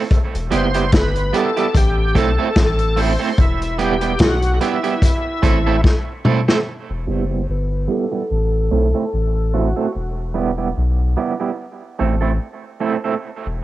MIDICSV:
0, 0, Header, 1, 5, 480
1, 0, Start_track
1, 0, Key_signature, 1, "minor"
1, 0, Tempo, 819672
1, 63, Time_signature, 4, 2, 24, 8
1, 7986, End_track
2, 0, Start_track
2, 0, Title_t, "Tonewheel organ"
2, 0, Program_c, 0, 16
2, 320, Note_on_c, 0, 72, 104
2, 535, Note_off_c, 0, 72, 0
2, 558, Note_on_c, 0, 71, 93
2, 794, Note_on_c, 0, 69, 97
2, 797, Note_off_c, 0, 71, 0
2, 1035, Note_off_c, 0, 69, 0
2, 1036, Note_on_c, 0, 67, 90
2, 1276, Note_off_c, 0, 67, 0
2, 1277, Note_on_c, 0, 69, 105
2, 1755, Note_on_c, 0, 72, 102
2, 1763, Note_off_c, 0, 69, 0
2, 1995, Note_off_c, 0, 72, 0
2, 1995, Note_on_c, 0, 64, 90
2, 2212, Note_off_c, 0, 64, 0
2, 2238, Note_on_c, 0, 67, 92
2, 2454, Note_off_c, 0, 67, 0
2, 2470, Note_on_c, 0, 66, 81
2, 2690, Note_off_c, 0, 66, 0
2, 2710, Note_on_c, 0, 64, 81
2, 3402, Note_off_c, 0, 64, 0
2, 4160, Note_on_c, 0, 72, 99
2, 4375, Note_off_c, 0, 72, 0
2, 4396, Note_on_c, 0, 71, 90
2, 4613, Note_off_c, 0, 71, 0
2, 4633, Note_on_c, 0, 69, 114
2, 5106, Note_off_c, 0, 69, 0
2, 5113, Note_on_c, 0, 69, 94
2, 5586, Note_on_c, 0, 66, 83
2, 5602, Note_off_c, 0, 69, 0
2, 5808, Note_off_c, 0, 66, 0
2, 7986, End_track
3, 0, Start_track
3, 0, Title_t, "Clean electric guitar"
3, 0, Program_c, 1, 27
3, 298, Note_on_c, 1, 55, 86
3, 302, Note_on_c, 1, 59, 95
3, 303, Note_on_c, 1, 64, 92
3, 305, Note_on_c, 1, 67, 88
3, 383, Note_off_c, 1, 55, 0
3, 385, Note_off_c, 1, 59, 0
3, 386, Note_off_c, 1, 64, 0
3, 387, Note_off_c, 1, 67, 0
3, 437, Note_on_c, 1, 67, 60
3, 440, Note_on_c, 1, 64, 62
3, 442, Note_on_c, 1, 59, 53
3, 444, Note_on_c, 1, 55, 48
3, 488, Note_off_c, 1, 67, 0
3, 489, Note_off_c, 1, 64, 0
3, 491, Note_off_c, 1, 59, 0
3, 492, Note_off_c, 1, 55, 0
3, 779, Note_on_c, 1, 55, 83
3, 782, Note_on_c, 1, 59, 86
3, 784, Note_on_c, 1, 64, 78
3, 785, Note_on_c, 1, 67, 91
3, 864, Note_off_c, 1, 55, 0
3, 865, Note_off_c, 1, 59, 0
3, 866, Note_off_c, 1, 64, 0
3, 867, Note_off_c, 1, 67, 0
3, 917, Note_on_c, 1, 67, 71
3, 919, Note_on_c, 1, 64, 60
3, 923, Note_on_c, 1, 55, 59
3, 923, Note_on_c, 1, 59, 60
3, 968, Note_off_c, 1, 67, 0
3, 969, Note_off_c, 1, 64, 0
3, 971, Note_off_c, 1, 55, 0
3, 971, Note_off_c, 1, 59, 0
3, 1257, Note_on_c, 1, 57, 78
3, 1261, Note_on_c, 1, 60, 85
3, 1261, Note_on_c, 1, 64, 84
3, 1263, Note_on_c, 1, 69, 84
3, 1343, Note_off_c, 1, 57, 0
3, 1344, Note_off_c, 1, 64, 0
3, 1345, Note_off_c, 1, 60, 0
3, 1345, Note_off_c, 1, 69, 0
3, 1397, Note_on_c, 1, 64, 61
3, 1397, Note_on_c, 1, 69, 65
3, 1401, Note_on_c, 1, 57, 55
3, 1401, Note_on_c, 1, 60, 61
3, 1448, Note_off_c, 1, 64, 0
3, 1448, Note_off_c, 1, 69, 0
3, 1450, Note_off_c, 1, 57, 0
3, 1450, Note_off_c, 1, 60, 0
3, 1736, Note_on_c, 1, 57, 94
3, 1741, Note_on_c, 1, 60, 90
3, 1742, Note_on_c, 1, 64, 88
3, 1744, Note_on_c, 1, 69, 91
3, 1822, Note_off_c, 1, 57, 0
3, 1825, Note_off_c, 1, 60, 0
3, 1825, Note_off_c, 1, 64, 0
3, 1826, Note_off_c, 1, 69, 0
3, 1869, Note_on_c, 1, 69, 67
3, 1873, Note_on_c, 1, 60, 67
3, 1875, Note_on_c, 1, 64, 62
3, 1878, Note_on_c, 1, 57, 59
3, 1924, Note_off_c, 1, 69, 0
3, 1926, Note_off_c, 1, 60, 0
3, 1927, Note_off_c, 1, 64, 0
3, 1928, Note_off_c, 1, 57, 0
3, 2217, Note_on_c, 1, 55, 86
3, 2218, Note_on_c, 1, 59, 87
3, 2220, Note_on_c, 1, 64, 88
3, 2221, Note_on_c, 1, 67, 92
3, 2302, Note_off_c, 1, 55, 0
3, 2303, Note_off_c, 1, 59, 0
3, 2304, Note_off_c, 1, 64, 0
3, 2304, Note_off_c, 1, 67, 0
3, 2350, Note_on_c, 1, 67, 57
3, 2352, Note_on_c, 1, 64, 50
3, 2353, Note_on_c, 1, 59, 52
3, 2354, Note_on_c, 1, 55, 44
3, 2404, Note_off_c, 1, 67, 0
3, 2405, Note_off_c, 1, 64, 0
3, 2406, Note_off_c, 1, 55, 0
3, 2406, Note_off_c, 1, 59, 0
3, 2698, Note_on_c, 1, 55, 83
3, 2701, Note_on_c, 1, 59, 87
3, 2702, Note_on_c, 1, 64, 98
3, 2703, Note_on_c, 1, 67, 93
3, 2783, Note_off_c, 1, 55, 0
3, 2784, Note_off_c, 1, 59, 0
3, 2785, Note_off_c, 1, 64, 0
3, 2785, Note_off_c, 1, 67, 0
3, 2832, Note_on_c, 1, 67, 72
3, 2834, Note_on_c, 1, 64, 63
3, 2836, Note_on_c, 1, 59, 59
3, 2838, Note_on_c, 1, 55, 62
3, 2885, Note_off_c, 1, 67, 0
3, 2886, Note_off_c, 1, 64, 0
3, 2887, Note_off_c, 1, 59, 0
3, 2888, Note_off_c, 1, 55, 0
3, 3175, Note_on_c, 1, 57, 80
3, 3177, Note_on_c, 1, 60, 88
3, 3179, Note_on_c, 1, 64, 92
3, 3182, Note_on_c, 1, 69, 95
3, 3262, Note_off_c, 1, 57, 0
3, 3263, Note_off_c, 1, 60, 0
3, 3263, Note_off_c, 1, 64, 0
3, 3265, Note_off_c, 1, 69, 0
3, 3316, Note_on_c, 1, 69, 73
3, 3317, Note_on_c, 1, 64, 70
3, 3319, Note_on_c, 1, 60, 57
3, 3321, Note_on_c, 1, 57, 61
3, 3367, Note_off_c, 1, 69, 0
3, 3368, Note_off_c, 1, 64, 0
3, 3369, Note_off_c, 1, 60, 0
3, 3370, Note_off_c, 1, 57, 0
3, 3659, Note_on_c, 1, 57, 81
3, 3662, Note_on_c, 1, 60, 88
3, 3663, Note_on_c, 1, 64, 85
3, 3666, Note_on_c, 1, 69, 83
3, 3743, Note_off_c, 1, 57, 0
3, 3745, Note_off_c, 1, 60, 0
3, 3746, Note_off_c, 1, 64, 0
3, 3747, Note_off_c, 1, 69, 0
3, 3796, Note_on_c, 1, 64, 65
3, 3796, Note_on_c, 1, 69, 73
3, 3800, Note_on_c, 1, 57, 58
3, 3801, Note_on_c, 1, 60, 62
3, 3847, Note_off_c, 1, 64, 0
3, 3847, Note_off_c, 1, 69, 0
3, 3849, Note_off_c, 1, 57, 0
3, 3850, Note_off_c, 1, 60, 0
3, 4141, Note_on_c, 1, 55, 80
3, 4143, Note_on_c, 1, 59, 76
3, 4144, Note_on_c, 1, 64, 84
3, 4146, Note_on_c, 1, 67, 81
3, 4225, Note_off_c, 1, 55, 0
3, 4226, Note_off_c, 1, 59, 0
3, 4226, Note_off_c, 1, 64, 0
3, 4227, Note_off_c, 1, 67, 0
3, 4272, Note_on_c, 1, 67, 53
3, 4275, Note_on_c, 1, 64, 53
3, 4278, Note_on_c, 1, 59, 43
3, 4279, Note_on_c, 1, 55, 44
3, 4325, Note_off_c, 1, 67, 0
3, 4327, Note_off_c, 1, 64, 0
3, 4328, Note_off_c, 1, 59, 0
3, 4329, Note_off_c, 1, 55, 0
3, 4614, Note_on_c, 1, 55, 78
3, 4617, Note_on_c, 1, 59, 73
3, 4618, Note_on_c, 1, 64, 77
3, 4619, Note_on_c, 1, 67, 82
3, 4701, Note_off_c, 1, 55, 0
3, 4703, Note_off_c, 1, 59, 0
3, 4703, Note_off_c, 1, 64, 0
3, 4704, Note_off_c, 1, 67, 0
3, 4751, Note_on_c, 1, 67, 60
3, 4754, Note_on_c, 1, 64, 53
3, 4755, Note_on_c, 1, 59, 50
3, 4759, Note_on_c, 1, 55, 52
3, 4805, Note_off_c, 1, 67, 0
3, 4806, Note_off_c, 1, 64, 0
3, 4807, Note_off_c, 1, 59, 0
3, 4809, Note_off_c, 1, 55, 0
3, 5102, Note_on_c, 1, 57, 80
3, 5103, Note_on_c, 1, 60, 71
3, 5107, Note_on_c, 1, 64, 90
3, 5109, Note_on_c, 1, 69, 94
3, 5185, Note_off_c, 1, 57, 0
3, 5186, Note_off_c, 1, 60, 0
3, 5188, Note_off_c, 1, 64, 0
3, 5189, Note_off_c, 1, 69, 0
3, 5237, Note_on_c, 1, 69, 64
3, 5240, Note_on_c, 1, 64, 62
3, 5241, Note_on_c, 1, 60, 50
3, 5244, Note_on_c, 1, 57, 48
3, 5288, Note_off_c, 1, 69, 0
3, 5289, Note_off_c, 1, 64, 0
3, 5290, Note_off_c, 1, 60, 0
3, 5292, Note_off_c, 1, 57, 0
3, 5584, Note_on_c, 1, 60, 78
3, 5585, Note_on_c, 1, 57, 69
3, 5589, Note_on_c, 1, 64, 83
3, 5591, Note_on_c, 1, 69, 73
3, 5667, Note_off_c, 1, 57, 0
3, 5667, Note_off_c, 1, 60, 0
3, 5669, Note_off_c, 1, 64, 0
3, 5670, Note_off_c, 1, 69, 0
3, 5716, Note_on_c, 1, 69, 68
3, 5717, Note_on_c, 1, 64, 63
3, 5721, Note_on_c, 1, 60, 64
3, 5723, Note_on_c, 1, 57, 58
3, 5768, Note_off_c, 1, 64, 0
3, 5768, Note_off_c, 1, 69, 0
3, 5770, Note_off_c, 1, 60, 0
3, 5771, Note_off_c, 1, 57, 0
3, 6057, Note_on_c, 1, 55, 81
3, 6060, Note_on_c, 1, 59, 82
3, 6061, Note_on_c, 1, 64, 80
3, 6064, Note_on_c, 1, 67, 74
3, 6143, Note_off_c, 1, 55, 0
3, 6145, Note_off_c, 1, 59, 0
3, 6145, Note_off_c, 1, 64, 0
3, 6147, Note_off_c, 1, 67, 0
3, 6196, Note_on_c, 1, 67, 61
3, 6197, Note_on_c, 1, 64, 49
3, 6199, Note_on_c, 1, 55, 44
3, 6200, Note_on_c, 1, 59, 52
3, 6248, Note_off_c, 1, 67, 0
3, 6249, Note_off_c, 1, 64, 0
3, 6250, Note_off_c, 1, 55, 0
3, 6250, Note_off_c, 1, 59, 0
3, 6541, Note_on_c, 1, 55, 77
3, 6543, Note_on_c, 1, 59, 78
3, 6546, Note_on_c, 1, 64, 81
3, 6547, Note_on_c, 1, 67, 82
3, 6625, Note_off_c, 1, 55, 0
3, 6627, Note_off_c, 1, 59, 0
3, 6628, Note_off_c, 1, 64, 0
3, 6629, Note_off_c, 1, 67, 0
3, 6675, Note_on_c, 1, 67, 60
3, 6680, Note_on_c, 1, 59, 51
3, 6680, Note_on_c, 1, 64, 57
3, 6682, Note_on_c, 1, 55, 49
3, 6728, Note_off_c, 1, 67, 0
3, 6730, Note_off_c, 1, 59, 0
3, 6730, Note_off_c, 1, 64, 0
3, 6731, Note_off_c, 1, 55, 0
3, 7022, Note_on_c, 1, 57, 69
3, 7024, Note_on_c, 1, 60, 72
3, 7026, Note_on_c, 1, 64, 73
3, 7027, Note_on_c, 1, 69, 79
3, 7106, Note_off_c, 1, 57, 0
3, 7107, Note_off_c, 1, 60, 0
3, 7108, Note_off_c, 1, 64, 0
3, 7109, Note_off_c, 1, 69, 0
3, 7150, Note_on_c, 1, 69, 69
3, 7154, Note_on_c, 1, 64, 68
3, 7156, Note_on_c, 1, 60, 61
3, 7159, Note_on_c, 1, 57, 58
3, 7206, Note_off_c, 1, 69, 0
3, 7208, Note_off_c, 1, 64, 0
3, 7209, Note_off_c, 1, 60, 0
3, 7210, Note_off_c, 1, 57, 0
3, 7498, Note_on_c, 1, 57, 70
3, 7501, Note_on_c, 1, 60, 75
3, 7501, Note_on_c, 1, 64, 78
3, 7503, Note_on_c, 1, 69, 77
3, 7585, Note_off_c, 1, 57, 0
3, 7586, Note_off_c, 1, 60, 0
3, 7586, Note_off_c, 1, 64, 0
3, 7587, Note_off_c, 1, 69, 0
3, 7637, Note_on_c, 1, 69, 64
3, 7640, Note_on_c, 1, 64, 63
3, 7641, Note_on_c, 1, 60, 61
3, 7642, Note_on_c, 1, 57, 58
3, 7690, Note_off_c, 1, 69, 0
3, 7691, Note_off_c, 1, 64, 0
3, 7692, Note_off_c, 1, 57, 0
3, 7692, Note_off_c, 1, 60, 0
3, 7986, End_track
4, 0, Start_track
4, 0, Title_t, "Sub bass"
4, 0, Program_c, 2, 38
4, 201, Note_on_c, 2, 28, 101
4, 299, Note_off_c, 2, 28, 0
4, 307, Note_on_c, 2, 30, 97
4, 531, Note_off_c, 2, 30, 0
4, 544, Note_on_c, 2, 31, 91
4, 770, Note_off_c, 2, 31, 0
4, 1023, Note_on_c, 2, 33, 98
4, 1249, Note_off_c, 2, 33, 0
4, 1263, Note_on_c, 2, 35, 84
4, 1389, Note_off_c, 2, 35, 0
4, 1501, Note_on_c, 2, 33, 77
4, 1855, Note_off_c, 2, 33, 0
4, 1982, Note_on_c, 2, 28, 94
4, 2438, Note_off_c, 2, 28, 0
4, 2461, Note_on_c, 2, 35, 92
4, 2688, Note_off_c, 2, 35, 0
4, 3180, Note_on_c, 2, 33, 91
4, 3407, Note_off_c, 2, 33, 0
4, 4039, Note_on_c, 2, 28, 95
4, 4137, Note_off_c, 2, 28, 0
4, 4144, Note_on_c, 2, 30, 90
4, 4369, Note_off_c, 2, 30, 0
4, 4385, Note_on_c, 2, 31, 87
4, 4610, Note_off_c, 2, 31, 0
4, 4864, Note_on_c, 2, 33, 92
4, 5090, Note_off_c, 2, 33, 0
4, 5103, Note_on_c, 2, 35, 84
4, 5230, Note_off_c, 2, 35, 0
4, 5347, Note_on_c, 2, 33, 71
4, 5698, Note_off_c, 2, 33, 0
4, 5828, Note_on_c, 2, 28, 97
4, 6283, Note_off_c, 2, 28, 0
4, 6308, Note_on_c, 2, 35, 94
4, 6533, Note_off_c, 2, 35, 0
4, 7028, Note_on_c, 2, 33, 96
4, 7253, Note_off_c, 2, 33, 0
4, 7881, Note_on_c, 2, 28, 100
4, 7981, Note_off_c, 2, 28, 0
4, 7986, End_track
5, 0, Start_track
5, 0, Title_t, "Drums"
5, 63, Note_on_c, 9, 36, 104
5, 64, Note_on_c, 9, 42, 65
5, 122, Note_off_c, 9, 36, 0
5, 122, Note_off_c, 9, 42, 0
5, 203, Note_on_c, 9, 42, 53
5, 262, Note_off_c, 9, 42, 0
5, 301, Note_on_c, 9, 42, 64
5, 360, Note_off_c, 9, 42, 0
5, 434, Note_on_c, 9, 42, 56
5, 492, Note_off_c, 9, 42, 0
5, 539, Note_on_c, 9, 42, 101
5, 543, Note_on_c, 9, 36, 122
5, 549, Note_on_c, 9, 38, 120
5, 598, Note_off_c, 9, 42, 0
5, 601, Note_off_c, 9, 36, 0
5, 607, Note_off_c, 9, 38, 0
5, 676, Note_on_c, 9, 42, 64
5, 735, Note_off_c, 9, 42, 0
5, 784, Note_on_c, 9, 42, 84
5, 842, Note_off_c, 9, 42, 0
5, 918, Note_on_c, 9, 42, 44
5, 976, Note_off_c, 9, 42, 0
5, 1022, Note_on_c, 9, 36, 113
5, 1025, Note_on_c, 9, 42, 100
5, 1080, Note_off_c, 9, 36, 0
5, 1083, Note_off_c, 9, 42, 0
5, 1260, Note_on_c, 9, 36, 91
5, 1265, Note_on_c, 9, 42, 78
5, 1319, Note_off_c, 9, 36, 0
5, 1324, Note_off_c, 9, 42, 0
5, 1497, Note_on_c, 9, 42, 98
5, 1500, Note_on_c, 9, 36, 115
5, 1500, Note_on_c, 9, 38, 96
5, 1555, Note_off_c, 9, 42, 0
5, 1558, Note_off_c, 9, 36, 0
5, 1558, Note_off_c, 9, 38, 0
5, 1632, Note_on_c, 9, 42, 53
5, 1691, Note_off_c, 9, 42, 0
5, 1738, Note_on_c, 9, 46, 82
5, 1797, Note_off_c, 9, 46, 0
5, 1980, Note_on_c, 9, 36, 111
5, 1981, Note_on_c, 9, 42, 65
5, 2039, Note_off_c, 9, 36, 0
5, 2039, Note_off_c, 9, 42, 0
5, 2118, Note_on_c, 9, 42, 54
5, 2177, Note_off_c, 9, 42, 0
5, 2219, Note_on_c, 9, 42, 71
5, 2278, Note_off_c, 9, 42, 0
5, 2348, Note_on_c, 9, 42, 49
5, 2407, Note_off_c, 9, 42, 0
5, 2452, Note_on_c, 9, 42, 103
5, 2460, Note_on_c, 9, 36, 127
5, 2462, Note_on_c, 9, 38, 116
5, 2511, Note_off_c, 9, 42, 0
5, 2519, Note_off_c, 9, 36, 0
5, 2520, Note_off_c, 9, 38, 0
5, 2590, Note_on_c, 9, 42, 60
5, 2648, Note_off_c, 9, 42, 0
5, 2699, Note_on_c, 9, 42, 76
5, 2757, Note_off_c, 9, 42, 0
5, 2833, Note_on_c, 9, 42, 44
5, 2892, Note_off_c, 9, 42, 0
5, 2940, Note_on_c, 9, 36, 110
5, 2942, Note_on_c, 9, 42, 101
5, 2998, Note_off_c, 9, 36, 0
5, 3000, Note_off_c, 9, 42, 0
5, 3178, Note_on_c, 9, 36, 88
5, 3180, Note_on_c, 9, 42, 81
5, 3237, Note_off_c, 9, 36, 0
5, 3238, Note_off_c, 9, 42, 0
5, 3419, Note_on_c, 9, 36, 118
5, 3425, Note_on_c, 9, 38, 56
5, 3478, Note_off_c, 9, 36, 0
5, 3483, Note_off_c, 9, 38, 0
5, 3659, Note_on_c, 9, 45, 92
5, 3718, Note_off_c, 9, 45, 0
5, 3797, Note_on_c, 9, 38, 98
5, 3856, Note_off_c, 9, 38, 0
5, 7986, End_track
0, 0, End_of_file